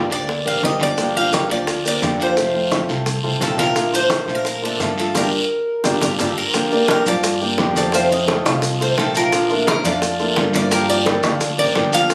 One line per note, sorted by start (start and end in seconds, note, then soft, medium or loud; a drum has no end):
0.00 0.10 D3 medium
0.00 0.10 F3 medium
0.00 0.10 A#3 medium
0.00 0.10 D4 medium
0.00 0.11 D5 medium
0.10 0.43 D2 medium
0.10 0.39 A#3 medium
0.10 0.27 A#3 soft
0.10 0.27 D4 soft
0.10 0.27 G4 soft
0.10 0.40 A#4 medium
0.10 0.40 D5 medium
0.10 0.44 D5 loud
0.10 high bongo soft
0.10 high conga soft
0.10 short guiro medium
0.27 muted nylon-string guitar stroke medium
0.27 high bongo medium
0.27 high conga soft
0.27 long guiro medium
0.45 0.62 A1 medium
0.45 0.74 A#3 medium
0.45 0.62 A#3 soft
0.45 0.63 D4 soft
0.45 0.62 G4 soft
0.45 0.74 A#4 medium
0.45 0.75 D5 medium
0.45 0.64 F5 medium
0.45 high bongo soft
0.45 high conga soft
0.62 1.45 G1 medium
0.62 0.96 D3 medium
0.62 0.97 F3 medium
0.62 0.97 A#3 medium
0.62 0.98 D4 medium
0.62 0.98 G4 medium
0.62 0.80 D#5 medium
0.62 high bongo soft
0.62 low bongo medium
0.62 high conga medium
0.62 short guiro medium
0.80 1.09 F3 medium
0.80 1.09 F4 medium
0.80 1.16 D5 medium
0.80 1.10 F5 medium
0.80 high conga medium
0.80 short guiro medium
0.97 1.14 D3 medium
0.97 1.15 F3 medium
0.97 1.15 A#3 medium
0.97 1.15 D4 medium
0.97 1.14 G4 medium
0.97 high bongo medium
0.97 high conga soft
0.97 long guiro medium
0.97 maracas medium
1.15 1.30 F3 medium
1.15 1.32 A#3 soft
1.15 1.32 D4 soft
1.15 1.30 F4 medium
1.15 1.32 G4 soft
1.15 1.30 F5 medium
1.15 1.51 F5 loud
1.15 high bongo soft
1.15 high conga soft
1.32 1.49 D3 medium
1.32 1.49 F3 medium
1.32 1.47 A#3 medium
1.32 1.50 A#3 medium
1.32 1.49 D4 medium
1.32 1.48 G4 medium
1.32 1.47 A#4 medium
1.32 1.47 D5 medium
1.32 high bongo medium
1.32 high conga medium
1.32 short guiro medium
1.32 maracas medium
1.49 1.99 D2 medium
1.49 1.79 F3 medium
1.49 1.67 A#3 soft
1.49 1.67 D4 soft
1.49 1.79 F4 medium
1.49 1.66 G4 soft
1.49 1.86 D5 loud
1.49 1.79 F5 medium
1.49 high bongo soft
1.49 high conga soft
1.49 short guiro medium
1.49 maracas soft
1.67 muted nylon-string guitar stroke medium
1.67 high bongo medium
1.67 high conga soft
1.67 long guiro medium
1.67 maracas medium
1.84 2.14 A#3 medium
1.84 2.02 A#3 soft
1.84 2.02 D4 soft
1.84 2.01 G4 soft
1.84 2.14 A#4 medium
1.84 2.14 D5 medium
1.84 2.22 D5 medium
1.84 high bongo soft
1.84 high conga soft
1.84 maracas medium
2.02 2.84 F2 medium
2.02 2.36 D3 medium
2.02 2.36 F3 medium
2.02 2.37 A#3 medium
2.02 2.37 D4 medium
2.02 2.37 G4 medium
2.02 high bongo soft
2.02 low bongo medium
2.02 high conga medium
2.02 short guiro medium
2.02 maracas medium
2.20 2.34 F3 medium
2.20 2.34 F4 medium
2.20 2.69 C5 medium
2.20 2.35 F5 medium
2.20 high conga soft
2.20 short guiro medium
2.20 maracas soft
2.37 2.54 C3 medium
2.37 2.54 D#3 medium
2.37 2.52 F3 medium
2.37 2.54 A3 medium
2.37 2.53 C4 medium
2.37 2.52 F4 medium
2.37 2.52 F5 medium
2.37 high bongo medium
2.37 high conga soft
2.37 long guiro medium
2.37 maracas medium
2.53 2.83 F3 medium
2.53 2.71 A3 soft
2.53 2.71 C4 soft
2.53 2.71 F4 soft
2.53 2.83 F4 medium
2.53 2.84 F5 medium
2.53 high bongo soft
2.53 high conga soft
2.71 2.88 C3 medium
2.71 2.88 D#3 medium
2.71 2.89 A3 medium
2.71 2.89 C4 medium
2.71 2.88 F4 medium
2.71 high bongo medium
2.71 high conga medium
2.71 short guiro medium
2.71 maracas medium
2.89 3.21 C2 medium
2.89 3.18 A3 medium
2.89 3.05 A3 soft
2.89 3.05 C4 soft
2.89 3.05 F4 soft
2.89 3.18 A4 medium
2.89 3.18 C5 medium
2.89 high bongo soft
2.89 high conga soft
2.89 short guiro medium
2.89 maracas soft
3.06 muted nylon-string guitar stroke medium
3.06 high bongo medium
3.06 high conga soft
3.06 long guiro medium
3.06 maracas medium
3.23 3.40 C2 medium
3.23 3.52 A3 medium
3.23 3.41 A3 soft
3.23 3.40 C4 soft
3.23 3.40 F4 soft
3.23 3.52 A4 medium
3.23 3.53 C5 medium
3.23 high bongo soft
3.23 high conga soft
3.40 4.22 A#1 medium
3.40 3.75 C3 medium
3.40 3.75 D#3 medium
3.40 3.75 A3 medium
3.40 3.76 C4 medium
3.40 3.76 F4 medium
3.40 3.58 A4 medium
3.40 high bongo soft
3.40 low bongo medium
3.40 high conga medium
3.40 short guiro medium
3.40 maracas medium
3.58 3.87 F3 medium
3.58 3.87 F4 medium
3.58 3.94 A#4 medium
3.58 3.87 F5 medium
3.58 high conga medium
3.58 short guiro medium
3.58 maracas soft
3.75 3.93 F3 medium
3.75 3.93 A3 medium
3.75 3.93 D4 medium
3.75 3.92 F4 medium
3.75 high bongo medium
3.75 high conga soft
3.75 long guiro medium
3.75 maracas medium
3.93 4.08 F3 medium
3.93 4.09 A3 soft
3.93 4.10 D4 soft
3.93 4.10 F4 soft
3.93 4.08 F4 medium
3.93 4.32 C5 loud
3.93 4.08 F5 medium
3.93 high bongo soft
3.93 high conga soft
3.93 maracas medium
4.10 4.27 F3 medium
4.10 4.28 A3 medium
4.10 4.25 A3 medium
4.10 4.28 D4 medium
4.10 4.26 F4 medium
4.10 4.25 A4 medium
4.10 4.25 A#4 medium
4.10 high bongo medium
4.10 high conga loud
4.10 short guiro medium
4.10 maracas medium
4.27 4.76 A#2 medium
4.27 4.57 F3 medium
4.27 4.44 A3 soft
4.27 4.45 D4 soft
4.27 4.45 F4 soft
4.27 4.57 F4 medium
4.27 4.57 F5 medium
4.27 high bongo soft
4.27 high conga soft
4.27 short guiro medium
4.27 maracas soft
4.35 4.46 A#4 medium
4.45 4.64 A#4 medium
4.45 muted nylon-string guitar stroke medium
4.45 high bongo medium
4.45 high conga soft
4.45 long guiro medium
4.45 maracas medium
4.62 4.80 A3 soft
4.62 4.91 A#3 medium
4.62 4.80 D4 soft
4.62 4.80 F4 soft
4.62 4.92 A4 medium
4.62 4.98 A4 medium
4.62 4.92 D5 medium
4.62 high bongo soft
4.62 high conga soft
4.80 5.13 G2 medium
4.80 5.15 F3 medium
4.80 5.15 A3 medium
4.80 5.14 D4 medium
4.80 5.15 F4 medium
4.80 high bongo soft
4.80 low bongo medium
4.80 high conga medium
4.80 short guiro medium
4.80 maracas medium
4.98 5.12 F3 medium
4.98 5.12 F4 medium
4.98 5.17 A4 medium
4.98 5.12 F5 medium
4.98 high conga soft
4.98 short guiro medium
4.98 maracas soft
5.15 5.28 G1 medium
5.15 5.27 G3 medium
5.15 5.27 A#3 medium
5.15 5.26 D4 loud
5.15 5.27 D4 medium
5.15 5.26 F4 loud
5.15 5.26 G4 loud
5.15 6.01 A#4 medium
5.15 high bongo loud
5.15 high conga medium
5.15 long guiro loud
5.15 maracas loud
5.84 5.98 G1 medium
5.84 5.96 G3 medium
5.84 5.95 A#3 medium
5.84 5.95 D4 medium
5.84 5.96 D4 loud
5.84 5.96 F4 medium
5.84 5.96 G4 loud
5.84 high bongo medium
5.84 high conga medium
5.84 long guiro loud
5.84 maracas loud
6.01 6.15 G1 medium
6.01 6.13 G3 medium
6.01 6.13 A#3 medium
6.01 6.13 D4 medium
6.01 6.13 F4 medium
6.01 6.13 G4 medium
6.01 6.07 A#4 medium
6.01 high bongo loud
6.01 high conga medium
6.01 long guiro medium
6.01 maracas loud
6.19 6.33 G1 medium
6.19 6.31 G3 medium
6.19 6.31 A#3 medium
6.19 6.31 D4 medium
6.19 6.31 F4 medium
6.19 6.31 G4 medium
6.19 6.36 A4 medium
6.19 high bongo medium
6.19 high conga medium
6.19 long guiro medium
6.19 maracas loud
6.38 6.89 A#4 medium
6.54 6.71 D3 medium
6.54 6.71 F3 medium
6.54 6.71 A#3 medium
6.54 6.72 D4 medium
6.54 6.70 G4 medium
6.54 high bongo medium
6.54 high conga soft
6.54 long guiro medium
6.54 maracas medium
6.71 7.00 A#3 medium
6.71 6.89 A#3 soft
6.71 6.89 D4 medium
6.71 6.88 G4 soft
6.71 7.01 A#4 medium
6.71 7.01 D5 medium
6.71 high bongo soft
6.71 high conga soft
6.71 maracas soft
6.88 7.06 D3 medium
6.88 7.06 F3 medium
6.88 7.06 A#3 medium
6.88 7.06 D4 medium
6.88 7.04 G4 medium
6.88 7.06 A#4 medium
6.88 high bongo medium
6.88 high conga loud
6.88 short guiro medium
6.88 maracas soft
7.06 7.55 G2 medium
7.06 7.35 F3 medium
7.06 7.23 A#3 soft
7.06 7.23 D4 soft
7.06 7.35 F4 medium
7.06 7.73 D5 medium
7.06 7.36 F5 medium
7.06 high conga soft
7.06 low conga medium
7.06 short guiro medium
7.06 maracas medium
7.23 muted nylon-string guitar stroke medium
7.23 high bongo medium
7.23 high conga soft
7.23 long guiro medium
7.23 maracas medium
7.41 7.70 A#3 medium
7.41 7.58 A#3 soft
7.41 7.58 D4 soft
7.41 7.58 G4 soft
7.41 7.70 A#4 medium
7.41 7.70 D5 medium
7.41 high bongo soft
7.41 high conga soft
7.41 maracas soft
7.58 8.40 F2 medium
7.58 7.93 D3 medium
7.58 7.93 F3 medium
7.58 7.93 A#3 medium
7.58 7.93 D4 medium
7.58 7.94 G4 medium
7.58 high bongo medium
7.58 low bongo medium
7.58 high conga medium
7.58 short guiro medium
7.58 maracas soft
7.75 7.91 A3 medium
7.75 7.91 A4 medium
7.75 7.91 C5 medium
7.75 7.94 D5 medium
7.75 high bongo soft
7.75 high conga medium
7.75 short guiro medium
7.75 maracas medium
7.92 8.10 C3 medium
7.92 8.10 D#3 medium
7.92 8.22 F3 medium
7.92 8.11 A3 medium
7.92 8.11 C4 medium
7.92 8.22 F4 medium
7.92 8.10 F4 medium
7.92 8.10 C5 medium
7.92 8.22 F5 medium
7.92 high bongo medium
7.92 high conga soft
7.92 long guiro medium
7.92 maracas medium
8.11 8.28 A3 soft
8.11 8.28 C4 soft
8.11 8.28 F4 medium
8.11 8.82 D#5 medium
8.11 high bongo soft
8.11 high conga soft
8.11 maracas soft
8.28 8.45 C3 medium
8.28 8.45 D#3 medium
8.28 8.43 A3 medium
8.28 8.45 A3 medium
8.28 8.45 C4 medium
8.28 8.44 F4 medium
8.28 8.43 A4 medium
8.28 8.43 C5 medium
8.28 high bongo medium
8.28 high conga medium
8.28 short guiro medium
8.28 maracas soft
8.45 8.94 C2 loud
8.45 8.74 F3 medium
8.45 8.62 A3 soft
8.45 8.62 C4 soft
8.45 8.62 F4 soft
8.45 8.74 F4 medium
8.45 8.75 F5 medium
8.45 high bongo soft
8.45 high conga loud
8.45 short guiro medium
8.45 maracas medium
8.62 muted nylon-string guitar stroke medium
8.62 high bongo medium
8.62 high conga soft
8.62 long guiro medium
8.62 maracas medium
8.80 9.09 A3 medium
8.80 8.97 A3 soft
8.80 8.97 C4 soft
8.80 8.97 F4 soft
8.80 9.09 A4 medium
8.80 9.09 C5 medium
8.80 8.87 C5 medium
8.80 high bongo soft
8.80 high conga soft
8.80 maracas soft
8.97 9.79 A#1 medium
8.97 9.31 C3 medium
8.97 9.32 D#3 medium
8.97 9.32 A3 medium
8.97 9.32 C4 medium
8.97 9.32 F4 medium
8.97 9.15 A4 medium
8.97 high bongo medium
8.97 low bongo medium
8.97 high conga soft
8.97 short guiro medium
8.97 maracas soft
9.15 9.44 F3 medium
9.15 9.44 F4 medium
9.15 9.67 A#4 medium
9.15 9.44 F5 medium
9.15 short guiro medium
9.15 maracas medium
9.32 9.49 F3 medium
9.32 9.50 A3 medium
9.32 9.50 D4 medium
9.32 9.49 F4 medium
9.32 high bongo medium
9.32 high conga soft
9.32 long guiro medium
9.32 maracas medium
9.50 9.66 A3 soft
9.50 9.79 A#3 medium
9.50 9.67 D4 soft
9.50 9.67 F4 soft
9.50 9.79 A4 medium
9.50 9.79 A#4 medium
9.50 high bongo soft
9.50 high conga soft
9.50 maracas soft
9.67 9.84 F3 medium
9.67 9.84 A3 medium
9.67 9.84 D4 medium
9.67 9.83 F4 medium
9.67 9.84 A#4 medium
9.67 high bongo medium
9.67 high conga loud
9.67 short guiro medium
9.67 maracas soft
9.84 10.33 F2 medium
9.84 10.13 F3 medium
9.84 10.02 A3 soft
9.84 10.02 D4 soft
9.84 10.01 F4 medium
9.84 10.13 F4 medium
9.84 10.54 D5 loud
9.84 10.14 F5 medium
9.84 high conga soft
9.84 low conga medium
9.84 short guiro medium
9.84 maracas medium
10.02 muted nylon-string guitar stroke medium
10.02 high bongo medium
10.02 high conga soft
10.02 long guiro medium
10.02 maracas medium
10.19 10.36 A3 soft
10.19 10.48 A#3 medium
10.19 10.36 D4 soft
10.19 10.36 F4 medium
10.19 10.48 A4 medium
10.19 10.49 A#4 medium
10.19 high bongo soft
10.19 high conga soft
10.19 maracas soft
10.36 11.18 G2 medium
10.36 10.71 F3 medium
10.36 10.71 A3 medium
10.36 10.71 D4 medium
10.36 10.71 F4 medium
10.36 high bongo medium
10.36 low bongo medium
10.36 high conga medium
10.36 short guiro medium
10.36 maracas soft
10.53 10.68 A#3 medium
10.53 10.69 A#4 medium
10.53 10.69 D5 medium
10.53 10.71 D5 medium
10.53 high bongo soft
10.53 high conga medium
10.53 short guiro medium
10.53 maracas medium
10.71 10.88 D3 medium
10.71 10.88 F3 medium
10.71 11.00 F3 medium
10.71 10.88 A#3 medium
10.71 10.88 D4 medium
10.71 11.00 F4 medium
10.71 10.88 G4 medium
10.71 10.88 A#4 loud
10.71 11.01 F5 medium
10.71 high bongo medium
10.71 high conga soft
10.71 long guiro medium
10.71 maracas medium
10.89 11.06 A#3 soft
10.89 11.06 D4 soft
10.89 11.06 G4 medium
10.89 11.58 D5 medium
10.89 high bongo soft
10.89 high conga soft
10.89 maracas soft
11.06 11.23 D3 medium
11.06 11.23 F3 medium
11.06 11.21 A#3 medium
11.06 11.23 A#3 medium
11.06 11.23 D4 medium
11.06 11.22 G4 medium
11.06 11.21 A#4 medium
11.06 11.21 D5 medium
11.06 high bongo medium
11.06 high conga loud
11.06 short guiro medium
11.06 maracas soft
11.23 11.56 D2 medium
11.23 11.53 F3 medium
11.23 11.40 A#3 soft
11.23 11.40 D4 soft
11.23 11.53 F4 medium
11.23 11.40 G4 soft
11.23 11.53 F5 medium
11.23 high bongo soft
11.23 high conga loud
11.23 short guiro medium
11.23 maracas medium
11.40 muted nylon-string guitar stroke medium
11.40 high bongo medium
11.40 high conga soft
11.40 long guiro medium
11.40 maracas medium
11.58 11.75 A1 medium
11.58 11.87 A#3 medium
11.58 11.75 A#3 soft
11.58 11.75 D4 soft
11.58 11.75 G4 soft
11.58 11.87 A#4 medium
11.58 11.87 D5 medium
11.58 11.91 D5 loud
11.58 high bongo soft
11.58 high conga soft
11.58 maracas soft
11.75 12.14 G1 medium
11.75 12.08 D3 medium
11.75 12.09 F3 medium
11.75 12.09 A#3 medium
11.75 12.09 D4 medium
11.75 12.10 G4 medium
11.75 high bongo medium
11.75 low bongo medium
11.75 high conga soft
11.75 short guiro medium
11.75 maracas soft
11.93 12.14 F3 medium
11.93 12.14 F4 medium
11.93 12.14 F5 medium
11.93 12.14 F5 loud
11.93 short guiro medium
11.93 maracas medium
12.09 12.14 D3 medium
12.09 12.14 F3 medium
12.09 12.14 A#3 medium
12.09 12.14 D4 medium
12.09 high bongo medium
12.09 high conga soft
12.09 long guiro medium
12.09 maracas medium